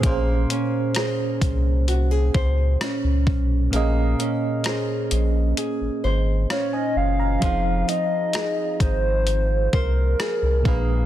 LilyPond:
<<
  \new Staff \with { instrumentName = "Soft synth lead" } { \time 4/4 \key bes \minor \tempo 4 = 65 r1 | r2. des''16 ees''16 f''8~ | f''8 ees''4 c''4 bes'4 aes'8 | }
  \new Staff \with { instrumentName = "FM electric piano" } { \time 4/4 \key bes \minor << { r1 | r2. <c'' f''>16 <ees'' aes''>8 <f'' bes''>16~ | <f'' bes''>16 r2. r8. | } \\ { <bes, bes des' aes' c''>1 | <bes, bes des' aes' ees''>1 | <f c' ees' aes' f''>2.~ <f c' ees' aes' f''>8 <bes, bes d' aes' ces''>8 | } >> }
  \new Staff \with { instrumentName = "Nylon-string guitar" } { \time 4/4 \key bes \minor bes8 des'8 <des' aes' c''>4 ges'16 aes'16 c''8 des'4 | bes8 des'8 <des' aes' c''>4 aes'8 c''8 des'4 | <f c''>8 ees'8 aes'8 ees'4 c''8 aes'8 bes8 | }
  \new Staff \with { instrumentName = "Sub bass" } { \clef bass \time 4/4 \key bes \minor bes,,8 r4 c,4 des,8 r16 des,16 ces,8 | bes,,8 r4 bes,,8 r16 aes,,16 aes,,8 r8 ges,,8 | f,,8 r4 aes,,4 c,8 r16 c,16 bes,,8 | }
  \new DrumStaff \with { instrumentName = "Drums" } \drummode { \time 4/4 <hh bd>8 hh8 <hh ss>8 <hh bd>8 hh8 bd8 <hh ss>8 bd8 | hh8 hh8 <hh ss>8 hh8 hh4 <hh ss>4 | <hh bd>8 hh8 <hh ss>8 <hh bd>8 hh8 bd8 <hh ss>8 bd8 | }
>>